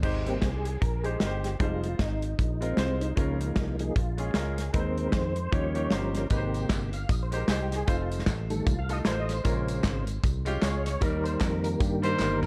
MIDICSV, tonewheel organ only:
0, 0, Header, 1, 2, 480
1, 0, Start_track
1, 0, Key_signature, -4, "major"
1, 0, Tempo, 392413
1, 37, Time_signature, 4, 2, 24, 8
1, 15246, End_track
2, 0, Start_track
2, 0, Title_t, "Tonewheel organ"
2, 0, Program_c, 0, 16
2, 314, Note_on_c, 0, 55, 49
2, 323, Note_on_c, 0, 58, 44
2, 323, Note_on_c, 0, 67, 84
2, 328, Note_on_c, 0, 60, 60
2, 410, Note_off_c, 0, 67, 0
2, 502, Note_on_c, 0, 68, 81
2, 611, Note_off_c, 0, 55, 0
2, 616, Note_off_c, 0, 58, 0
2, 619, Note_off_c, 0, 60, 0
2, 986, Note_on_c, 0, 70, 93
2, 1004, Note_off_c, 0, 68, 0
2, 1267, Note_on_c, 0, 68, 94
2, 1286, Note_off_c, 0, 70, 0
2, 1464, Note_on_c, 0, 67, 93
2, 1476, Note_off_c, 0, 68, 0
2, 1917, Note_off_c, 0, 67, 0
2, 1955, Note_on_c, 0, 55, 51
2, 1960, Note_on_c, 0, 56, 46
2, 1963, Note_on_c, 0, 65, 88
2, 1967, Note_on_c, 0, 63, 58
2, 2302, Note_off_c, 0, 55, 0
2, 2304, Note_off_c, 0, 56, 0
2, 2308, Note_off_c, 0, 63, 0
2, 2437, Note_on_c, 0, 63, 79
2, 2455, Note_off_c, 0, 65, 0
2, 2911, Note_off_c, 0, 63, 0
2, 3205, Note_on_c, 0, 60, 101
2, 3682, Note_on_c, 0, 63, 86
2, 3699, Note_off_c, 0, 60, 0
2, 3863, Note_off_c, 0, 63, 0
2, 3867, Note_on_c, 0, 53, 50
2, 3875, Note_on_c, 0, 58, 49
2, 3878, Note_on_c, 0, 63, 61
2, 3885, Note_on_c, 0, 61, 73
2, 4147, Note_off_c, 0, 61, 0
2, 4599, Note_off_c, 0, 53, 0
2, 4604, Note_off_c, 0, 58, 0
2, 4605, Note_off_c, 0, 63, 0
2, 4636, Note_on_c, 0, 53, 47
2, 4647, Note_on_c, 0, 58, 41
2, 4651, Note_on_c, 0, 63, 44
2, 4651, Note_on_c, 0, 68, 76
2, 4744, Note_off_c, 0, 68, 0
2, 4759, Note_on_c, 0, 68, 66
2, 4815, Note_off_c, 0, 53, 0
2, 4821, Note_off_c, 0, 58, 0
2, 4823, Note_off_c, 0, 63, 0
2, 4833, Note_off_c, 0, 68, 0
2, 4839, Note_on_c, 0, 65, 76
2, 5285, Note_off_c, 0, 65, 0
2, 5317, Note_on_c, 0, 68, 83
2, 5764, Note_off_c, 0, 68, 0
2, 5795, Note_on_c, 0, 51, 52
2, 5803, Note_on_c, 0, 56, 51
2, 5807, Note_on_c, 0, 70, 93
2, 5812, Note_on_c, 0, 60, 53
2, 6208, Note_on_c, 0, 71, 68
2, 6226, Note_off_c, 0, 70, 0
2, 6278, Note_off_c, 0, 71, 0
2, 6283, Note_on_c, 0, 72, 84
2, 6524, Note_off_c, 0, 51, 0
2, 6528, Note_off_c, 0, 56, 0
2, 6533, Note_off_c, 0, 60, 0
2, 6753, Note_on_c, 0, 53, 48
2, 6762, Note_on_c, 0, 55, 41
2, 6764, Note_on_c, 0, 73, 89
2, 6767, Note_on_c, 0, 61, 49
2, 6775, Note_off_c, 0, 72, 0
2, 7243, Note_on_c, 0, 70, 83
2, 7255, Note_off_c, 0, 73, 0
2, 7668, Note_off_c, 0, 53, 0
2, 7672, Note_off_c, 0, 55, 0
2, 7675, Note_off_c, 0, 61, 0
2, 7687, Note_off_c, 0, 70, 0
2, 7703, Note_on_c, 0, 48, 55
2, 7717, Note_on_c, 0, 67, 46
2, 7723, Note_on_c, 0, 58, 59
2, 8438, Note_off_c, 0, 48, 0
2, 8445, Note_off_c, 0, 67, 0
2, 8448, Note_off_c, 0, 58, 0
2, 8483, Note_on_c, 0, 77, 90
2, 8679, Note_on_c, 0, 75, 87
2, 8684, Note_off_c, 0, 77, 0
2, 8751, Note_off_c, 0, 75, 0
2, 8839, Note_on_c, 0, 72, 80
2, 8988, Note_off_c, 0, 72, 0
2, 9013, Note_on_c, 0, 70, 81
2, 9155, Note_off_c, 0, 70, 0
2, 9165, Note_on_c, 0, 68, 83
2, 9311, Note_off_c, 0, 68, 0
2, 9325, Note_on_c, 0, 67, 75
2, 9486, Note_off_c, 0, 67, 0
2, 9488, Note_on_c, 0, 68, 84
2, 9632, Note_off_c, 0, 68, 0
2, 9649, Note_on_c, 0, 65, 73
2, 9910, Note_off_c, 0, 65, 0
2, 10398, Note_on_c, 0, 51, 48
2, 10403, Note_on_c, 0, 55, 47
2, 10403, Note_on_c, 0, 69, 89
2, 10410, Note_on_c, 0, 57, 55
2, 10584, Note_off_c, 0, 69, 0
2, 10595, Note_on_c, 0, 65, 78
2, 10694, Note_off_c, 0, 51, 0
2, 10697, Note_off_c, 0, 55, 0
2, 10700, Note_off_c, 0, 57, 0
2, 10749, Note_on_c, 0, 77, 97
2, 10761, Note_off_c, 0, 65, 0
2, 10919, Note_off_c, 0, 77, 0
2, 10921, Note_on_c, 0, 75, 92
2, 10992, Note_off_c, 0, 75, 0
2, 11091, Note_on_c, 0, 72, 91
2, 11249, Note_off_c, 0, 72, 0
2, 11250, Note_on_c, 0, 75, 94
2, 11408, Note_off_c, 0, 75, 0
2, 11412, Note_on_c, 0, 72, 84
2, 11548, Note_on_c, 0, 49, 58
2, 11554, Note_off_c, 0, 72, 0
2, 11560, Note_on_c, 0, 56, 52
2, 11570, Note_on_c, 0, 72, 61
2, 11571, Note_on_c, 0, 70, 77
2, 11697, Note_off_c, 0, 70, 0
2, 12279, Note_off_c, 0, 49, 0
2, 12286, Note_off_c, 0, 56, 0
2, 12291, Note_off_c, 0, 72, 0
2, 12992, Note_on_c, 0, 73, 99
2, 13265, Note_off_c, 0, 73, 0
2, 13279, Note_on_c, 0, 73, 119
2, 13460, Note_on_c, 0, 51, 57
2, 13469, Note_on_c, 0, 55, 52
2, 13471, Note_on_c, 0, 70, 101
2, 13476, Note_on_c, 0, 58, 58
2, 13481, Note_off_c, 0, 73, 0
2, 13747, Note_on_c, 0, 72, 106
2, 13768, Note_off_c, 0, 70, 0
2, 13938, Note_on_c, 0, 70, 86
2, 13955, Note_off_c, 0, 72, 0
2, 14219, Note_off_c, 0, 70, 0
2, 14234, Note_on_c, 0, 70, 89
2, 14428, Note_on_c, 0, 67, 82
2, 14439, Note_off_c, 0, 70, 0
2, 14698, Note_off_c, 0, 67, 0
2, 14719, Note_on_c, 0, 70, 109
2, 15246, Note_off_c, 0, 51, 0
2, 15246, Note_off_c, 0, 55, 0
2, 15246, Note_off_c, 0, 58, 0
2, 15246, Note_off_c, 0, 70, 0
2, 15246, End_track
0, 0, End_of_file